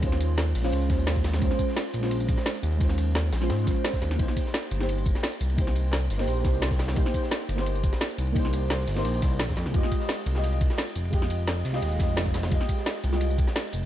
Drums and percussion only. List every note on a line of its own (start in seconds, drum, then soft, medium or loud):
0.02 kick loud
0.02 closed hi-hat medium
0.02 ride medium
0.12 snare soft
0.20 closed hi-hat medium
0.20 ride medium
0.20 tambourine medium
0.38 snare loud
0.38 closed hi-hat medium
0.38 ride medium
0.55 closed hi-hat medium
0.55 open hi-hat medium
0.55 tambourine medium
0.64 snare soft
0.72 closed hi-hat medium
0.72 ride medium
0.82 tambourine soft
0.90 kick loud
0.90 snare soft
0.90 closed hi-hat medium
0.90 ride medium
0.90 tambourine medium
0.99 tambourine soft
1.07 snare loud
1.07 closed hi-hat medium
1.07 ride medium
1.16 kick medium
1.16 snare medium
1.16 tambourine soft
1.24 snare soft
1.24 snare loud
1.24 closed hi-hat medium
1.24 ride medium
1.24 tambourine medium
1.34 snare loud
1.34 snare soft
1.34 ride medium
1.42 kick loud
1.42 closed hi-hat loud
1.42 ride loud
1.51 snare soft
1.59 kick medium
1.59 closed hi-hat medium
1.59 ride medium
1.59 tambourine medium
1.69 snare soft
1.77 snare loud
1.77 closed hi-hat loud
1.77 ride medium
1.94 closed hi-hat medium
1.94 ride medium
1.94 tambourine medium
2.03 snare medium
2.03 snare soft
2.11 closed hi-hat medium
2.11 ride medium
2.20 ride soft
2.20 tambourine soft
2.28 kick loud
2.28 closed hi-hat medium
2.28 ride medium
2.28 tambourine medium
2.37 snare soft
2.37 tambourine soft
2.46 snare loud
2.46 closed hi-hat medium
2.46 ride medium
2.55 ride soft
2.55 tambourine soft
2.63 closed hi-hat medium
2.63 ride medium
2.63 tambourine medium
2.72 ride soft
2.81 kick loud
2.81 closed hi-hat medium
2.81 ride medium
2.90 snare soft
2.98 closed hi-hat medium
2.98 ride medium
2.98 tambourine medium
3.15 snare loud
3.15 closed hi-hat loud
3.15 ride medium
3.33 snare loud
3.33 closed hi-hat medium
3.33 ride medium
3.33 tambourine medium
3.42 snare soft
3.50 snare loud
3.50 closed hi-hat loud
3.50 ride medium
3.59 tambourine soft
3.67 kick loud
3.67 snare soft
3.67 closed hi-hat medium
3.67 ride medium
3.67 tambourine medium
3.76 tambourine soft
3.84 snare loud
3.84 closed hi-hat loud
3.84 ride medium
3.94 kick medium
3.94 snare medium
3.94 tambourine soft
4.02 snare soft
4.02 closed hi-hat medium
4.02 ride medium
4.02 tambourine medium
4.11 snare soft
4.19 kick loud
4.19 closed hi-hat medium
4.19 ride medium
4.28 snare soft
4.36 kick medium
4.36 closed hi-hat medium
4.36 ride medium
4.36 tambourine medium
4.46 snare soft
4.54 snare loud
4.54 closed hi-hat medium
4.54 ride medium
4.71 closed hi-hat medium
4.71 ride medium
4.71 tambourine medium
4.81 snare medium
4.81 snare soft
4.89 closed hi-hat loud
4.89 ride medium
4.98 ride soft
4.98 tambourine soft
5.06 kick loud
5.06 closed hi-hat medium
5.06 ride medium
5.06 tambourine medium
5.15 snare soft
5.15 tambourine soft
5.23 snare loud
5.23 closed hi-hat loud
5.23 ride medium
5.32 ride soft
5.32 tambourine soft
5.41 closed hi-hat medium
5.41 ride medium
5.41 tambourine medium
5.50 ride soft
5.58 kick loud
5.58 closed hi-hat medium
5.58 ride medium
5.67 snare medium
5.75 closed hi-hat medium
5.75 ride medium
5.75 tambourine medium
5.92 snare loud
5.92 closed hi-hat medium
5.92 ride medium
6.10 closed hi-hat medium
6.10 open hi-hat medium
6.10 tambourine medium
6.19 snare soft
6.28 closed hi-hat loud
6.28 ride medium
6.37 tambourine soft
6.44 kick loud
6.44 snare medium
6.44 closed hi-hat medium
6.44 ride medium
6.44 tambourine medium
6.54 tambourine soft
6.62 snare loud
6.62 closed hi-hat medium
6.62 ride medium
6.71 kick medium
6.71 snare medium
6.71 tambourine soft
6.79 snare loud
6.79 snare soft
6.79 closed hi-hat medium
6.79 ride medium
6.79 tambourine medium
6.88 snare loud
6.88 snare soft
6.88 ride medium
6.96 kick loud
6.96 closed hi-hat medium
6.96 ride medium
7.06 snare medium
7.14 kick medium
7.14 closed hi-hat medium
7.14 ride medium
7.14 tambourine medium
7.23 snare soft
7.31 snare loud
7.31 closed hi-hat medium
7.31 ride medium
7.49 closed hi-hat medium
7.49 ride medium
7.49 tambourine medium
7.58 snare medium
7.58 snare soft
7.66 closed hi-hat medium
7.66 ride medium
7.75 ride soft
7.75 tambourine soft
7.83 kick loud
7.83 closed hi-hat medium
7.83 ride medium
7.83 tambourine medium
7.93 snare soft
7.93 tambourine soft
8.01 snare loud
8.01 closed hi-hat medium
8.01 ride medium
8.10 ride soft
8.10 tambourine soft
8.18 closed hi-hat medium
8.18 ride medium
8.18 tambourine medium
8.27 ride soft
8.36 kick loud
8.36 closed hi-hat medium
8.36 ride medium
8.45 snare soft
8.53 closed hi-hat medium
8.53 ride medium
8.53 tambourine medium
8.70 snare loud
8.70 closed hi-hat medium
8.70 ride medium
8.87 closed hi-hat medium
8.87 open hi-hat medium
8.87 tambourine medium
8.97 snare soft
9.05 closed hi-hat medium
9.05 ride medium
9.14 tambourine soft
9.22 kick loud
9.22 snare soft
9.22 closed hi-hat medium
9.22 ride medium
9.22 tambourine medium
9.31 tambourine soft
9.39 snare loud
9.39 closed hi-hat medium
9.39 ride loud
9.49 kick medium
9.49 snare medium
9.49 tambourine soft
9.57 snare soft
9.57 closed hi-hat medium
9.57 ride medium
9.57 tambourine medium
9.66 snare soft
9.74 kick loud
9.74 closed hi-hat medium
9.74 ride medium
9.83 snare soft
9.92 kick medium
9.92 closed hi-hat medium
9.92 ride medium
9.92 tambourine medium
10.01 snare soft
10.09 snare loud
10.09 closed hi-hat medium
10.09 ride medium
10.26 closed hi-hat medium
10.26 ride medium
10.26 tambourine medium
10.35 snare medium
10.35 snare soft
10.44 closed hi-hat medium
10.44 ride loud
10.52 ride soft
10.52 tambourine soft
10.61 kick loud
10.61 closed hi-hat medium
10.61 ride medium
10.61 tambourine medium
10.70 snare soft
10.70 tambourine soft
10.78 snare loud
10.78 closed hi-hat medium
10.78 ride medium
10.87 ride soft
10.87 tambourine soft
10.95 closed hi-hat medium
10.95 ride medium
10.95 tambourine medium
11.05 ride soft
11.13 kick loud
11.13 closed hi-hat medium
11.13 ride medium
11.22 snare soft
11.30 closed hi-hat medium
11.30 ride medium
11.30 tambourine medium
11.47 snare loud
11.47 closed hi-hat medium
11.47 ride medium
11.65 closed hi-hat medium
11.65 open hi-hat medium
11.65 tambourine medium
11.74 snare soft
11.82 closed hi-hat medium
11.82 ride medium
11.92 tambourine soft
11.99 kick loud
11.99 snare soft
11.99 closed hi-hat medium
11.99 ride medium
11.99 tambourine medium
12.09 tambourine soft
12.17 snare loud
12.17 closed hi-hat medium
12.17 ride medium
12.26 kick medium
12.26 snare medium
12.26 tambourine soft
12.34 snare soft
12.34 snare loud
12.34 closed hi-hat medium
12.34 ride medium
12.34 tambourine medium
12.43 snare loud
12.43 snare soft
12.43 ride medium
12.52 kick loud
12.52 closed hi-hat loud
12.52 ride medium
12.61 snare soft
12.69 kick medium
12.69 closed hi-hat medium
12.69 ride medium
12.69 tambourine medium
12.78 snare soft
12.86 snare loud
12.86 closed hi-hat medium
12.86 ride medium
13.04 closed hi-hat medium
13.04 ride medium
13.04 tambourine medium
13.13 snare medium
13.13 snare soft
13.21 closed hi-hat loud
13.21 ride medium
13.30 ride soft
13.30 tambourine soft
13.38 kick loud
13.38 closed hi-hat medium
13.38 ride medium
13.38 tambourine medium
13.48 snare soft
13.48 tambourine soft
13.56 snare loud
13.56 closed hi-hat loud
13.56 ride medium
13.65 ride soft
13.65 tambourine soft
13.73 closed hi-hat medium
13.73 ride medium
13.73 tambourine medium